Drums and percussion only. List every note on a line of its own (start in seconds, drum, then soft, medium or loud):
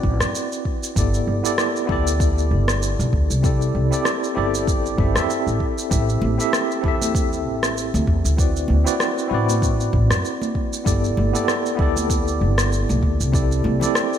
0.03 kick medium
0.20 cross-stick medium
0.20 shaker medium
0.35 shaker medium
0.52 shaker soft
0.65 kick medium
0.83 shaker medium
0.96 kick loud
0.96 shaker medium
1.14 shaker soft
1.45 shaker medium
1.58 cross-stick medium
1.58 shaker medium
1.76 shaker soft
1.89 kick loud
2.07 shaker medium
2.20 kick loud
2.20 shaker medium
2.38 shaker soft
2.68 cross-stick medium
2.68 shaker medium
2.83 shaker medium
3.00 shaker soft
3.13 kick medium
3.31 shaker medium
3.44 kick loud
3.44 shaker medium
3.62 shaker soft
3.93 shaker medium
4.05 cross-stick medium
4.05 shaker medium
4.24 shaker soft
4.55 shaker medium
4.67 kick loud
4.67 shaker medium
4.86 shaker soft
4.98 kick loud
5.16 cross-stick medium
5.16 shaker medium
5.30 shaker medium
5.48 shaker soft
5.60 kick medium
5.78 shaker medium
5.91 kick loud
5.91 shaker medium
6.09 shaker soft
6.22 high conga medium
6.40 shaker medium
6.53 cross-stick medium
6.53 shaker medium
6.71 shaker soft
6.84 kick medium
7.01 high conga medium
7.01 shaker medium
7.15 kick loud
7.15 shaker medium
7.33 shaker soft
7.63 cross-stick medium
7.63 shaker medium
7.77 shaker medium
7.94 high conga medium
7.94 shaker soft
8.07 kick medium
8.25 shaker medium
8.38 kick loud
8.38 shaker medium
8.57 shaker soft
8.68 high conga medium
8.87 shaker medium
9.00 cross-stick medium
9.00 shaker medium
9.18 shaker soft
9.49 high conga medium
9.49 shaker medium
9.62 kick loud
9.62 shaker medium
9.80 shaker soft
9.93 kick medium
10.11 cross-stick medium
10.11 shaker medium
10.25 shaker soft
10.42 high conga medium
10.42 shaker soft
10.55 kick medium
10.73 shaker medium
10.86 kick loud
10.86 shaker medium
11.04 shaker soft
11.17 high conga medium
11.35 shaker medium
11.48 cross-stick medium
11.48 shaker medium
11.66 shaker soft
11.79 kick medium
11.96 high conga medium
11.96 shaker medium
12.10 kick loud
12.10 shaker medium
12.28 shaker soft
12.58 cross-stick medium
12.58 shaker medium
12.72 shaker medium
12.89 high conga medium
12.89 shaker soft
13.03 kick medium
13.21 shaker medium
13.34 kick loud
13.34 shaker medium
13.52 shaker soft
13.64 high conga medium
13.81 low conga medium
13.81 shaker medium
13.95 cross-stick medium
13.95 shaker medium
14.13 shaker soft